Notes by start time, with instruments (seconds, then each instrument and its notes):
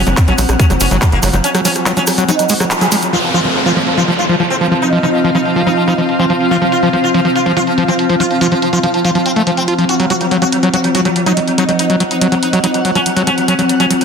Already playing: ambient pad F3 C4 F#5
0.07 analog synth bass F#1, acid bass F#3, sitar F#3, closed hi-hat, cabasa
0.17 sitar F#3, kick, cross-stick, clap, closed hi-hat, cabasa
0.28 analog synth bass A#1, acid bass F#3, sitar C#4, closed hi-hat
0.38 analog synth bass A#1, acid bass F#3, sitar F#3, open hi-hat, cabasa
0.49 analog synth bass A#1, sitar F#3, cross-stick, closed hi-hat, cabasa
0.59 acid bass F#3, sitar C#4, kick, closed hi-hat, cabasa
0.70 analog synth bass F#1, acid bass F#3, sitar F#3, cross-stick, closed hi-hat, cabasa
0.80 analog synth bass F#1, sitar C#4, open hi-hat, cabasa
0.91 analog synth bass F#1, acid bass F#3, sitar F#3, closed hi-hat, cabasa
1.02 acid bass F#3, sitar F#3, kick, cross-stick, clap, closed hi-hat, cabasa
1.12 analog synth bass F#1, sitar A#3, closed hi-hat
1.23 analog synth bass F#1, acid bass F#3, sitar F#3, cross-stick, open hi-hat, cabasa
1.33 analog synth bass F#1, acid bass F#3, sitar F#3, closed hi-hat, cabasa
1.44 sitar C#4, closed hi-hat, cabasa
1.54 acid bass F#3, sitar F#3, cross-stick, closed hi-hat, cabasa
1.65 acid bass F#3, sitar C#4, open hi-hat, cabasa
1.75 sitar F#3, cross-stick, closed hi-hat, cabasa
1.86 acid bass F#3, sitar F#3, clap, closed hi-hat, cabasa
1.97 acid bass F#3, sitar C#4, closed hi-hat, cabasa
2.07 sitar F#3, cross-stick, open hi-hat, cabasa
2.18 acid bass F#3, sitar F#3, closed hi-hat, cabasa
2.28 acid bass F#3, sitar D#4, cross-stick, closed hi-hat, cabasa
2.39 sitar F#3, closed hi-hat, cabasa
2.49 acid bass G#3, sitar F#4, open hi-hat, cabasa
2.60 acid bass F#3, sitar F#3, cross-stick, closed hi-hat, cabasa
2.71 sitar F#3, clap, closed hi-hat, cabasa
2.81 acid bass F#3, sitar G#4, cross-stick, closed hi-hat, cabasa
2.92 sitar F#3, acid bass G#3, open hi-hat, cabasa
3.02 sitar F#3, closed hi-hat, cabasa
3.13 acid bass F3, ambient pad F3 C4, sitar F4, downlifter
3.23 sitar F3, ambient pad F4
3.30 acid bass F3, sitar F4, ambient pad F5
3.45 acid bass F3, sitar F3
3.55 sitar F3
3.66 acid bass F3, sitar F4
3.76 acid bass F3, sitar F3
3.87 sitar F3
3.97 acid bass F3, sitar F4
4.08 acid bass F3, sitar F3
4.19 sitar F4, closed hi-hat
4.29 acid bass F3, sitar F3, closed hi-hat
4.40 acid bass F3, sitar F3, closed hi-hat
4.50 sitar C4
4.61 acid bass F3, sitar F3, closed hi-hat
4.71 acid bass F3, sitar F3, closed hi-hat
4.82 sitar D#4, closed hi-hat
4.93 acid bass F3, sitar F3, closed hi-hat
5.03 acid bass F3, sitar D#4, closed hi-hat
5.14 sitar F3, closed hi-hat
5.24 acid bass F3, sitar F3, closed hi-hat
5.35 acid bass F3, sitar D#4, closed hi-hat
5.45 sitar F3, closed hi-hat
5.56 acid bass F3, sitar F3, closed hi-hat
5.67 acid bass F3, sitar D#4, closed hi-hat
5.77 sitar F3, closed hi-hat
5.88 acid bass F3, sitar D#4, closed hi-hat
5.98 acid bass F3, sitar F3, closed hi-hat
6.09 sitar F3, closed hi-hat
6.19 acid bass F3, sitar C4, closed hi-hat
6.30 acid bass F3, sitar F3, closed hi-hat
6.41 sitar F3, closed hi-hat
6.51 acid bass F3, sitar F4, closed hi-hat
6.62 acid bass F3, sitar F3, closed hi-hat
6.72 sitar F4, closed hi-hat
6.83 acid bass F3, sitar F3, closed hi-hat
6.93 acid bass F3, sitar F3, closed hi-hat
7.04 sitar F4, closed hi-hat
7.14 acid bass F3, sitar F3, closed hi-hat
7.25 acid bass F3, sitar F3, closed hi-hat
7.36 sitar F4, closed hi-hat
7.46 acid bass F3, sitar F3, closed hi-hat
7.57 acid bass F3, sitar F4, closed hi-hat
7.67 sitar F3, closed hi-hat
7.78 acid bass F3, sitar F3, closed hi-hat
7.88 acid bass F3, sitar C4, closed hi-hat
7.99 sitar F3, closed hi-hat
8.09 acid bass F3, sitar F3, closed hi-hat
8.20 acid bass F3, sitar F4, closed hi-hat
8.31 sitar F3, closed hi-hat
8.41 acid bass F3, sitar F4, closed hi-hat
8.52 acid bass F3, sitar F3, closed hi-hat
8.62 sitar F3, closed hi-hat
8.73 acid bass F3, sitar F4, closed hi-hat
8.83 acid bass F3, sitar F3, closed hi-hat
8.94 sitar F3, closed hi-hat
9.05 acid bass F3, sitar F4, closed hi-hat
9.15 acid bass F3, sitar F3, closed hi-hat
9.26 sitar C4, closed hi-hat
9.36 sitar F3, acid bass A3, closed hi-hat
9.47 acid bass F3, sitar F3, closed hi-hat
9.57 sitar C4, closed hi-hat
9.68 sitar F3, acid bass F4, closed hi-hat
9.78 acid bass F3, sitar F3, closed hi-hat
9.89 sitar F#4, closed hi-hat
10.00 acid bass F#3, sitar F#3, closed hi-hat
10.10 acid bass F#3, sitar F#4, closed hi-hat
10.21 sitar F#3, closed hi-hat
10.31 acid bass F#3, sitar F#3, closed hi-hat
10.42 acid bass F#3, sitar F#4, closed hi-hat
10.52 sitar F#3, closed hi-hat
10.63 acid bass F#3, sitar F#3, closed hi-hat
10.74 acid bass F#3, sitar F#4, closed hi-hat
10.79 ambient pad F#5
10.84 sitar F#3, closed hi-hat
10.95 acid bass F#3, sitar F#4, closed hi-hat
11.05 sitar F#3, acid bass F#3, closed hi-hat
11.16 sitar F#3, closed hi-hat
11.26 acid bass F#3, sitar D#4, closed hi-hat
11.37 sitar F#3, acid bass F#3, closed hi-hat
11.47 sitar F#3, closed hi-hat
11.58 acid bass F#3, sitar D#4, closed hi-hat
11.69 sitar F#3, acid bass F#3, closed hi-hat
11.79 sitar D#4, closed hi-hat
11.90 acid bass F#3, sitar F#3, closed hi-hat
12.00 acid bass F#3, sitar F#3, closed hi-hat
12.11 sitar D#4, closed hi-hat
12.21 acid bass F#3, sitar F#3, closed hi-hat
12.32 acid bass F#3, sitar F#3, closed hi-hat
12.43 sitar D#4, closed hi-hat
12.53 acid bass F#3, sitar F#3, closed hi-hat
12.64 acid bass F#3, sitar D#4, closed hi-hat
12.74 sitar F#3, closed hi-hat
12.85 acid bass F#3, sitar F#3, closed hi-hat
12.95 acid bass F#3, sitar C#4, closed hi-hat
13.06 sitar F#3, closed hi-hat
13.16 acid bass F#3, sitar F#3, closed hi-hat
13.27 acid bass F#3, sitar C#4, closed hi-hat
13.38 sitar F#3, closed hi-hat
13.48 acid bass F#3, sitar C#4, closed hi-hat
13.59 acid bass F#3, sitar F#3, closed hi-hat
13.69 sitar F#3, closed hi-hat
13.80 acid bass F#3, sitar C#4, closed hi-hat
13.90 sitar F#3, acid bass F#3, closed hi-hat
14.01 sitar F#3, closed hi-hat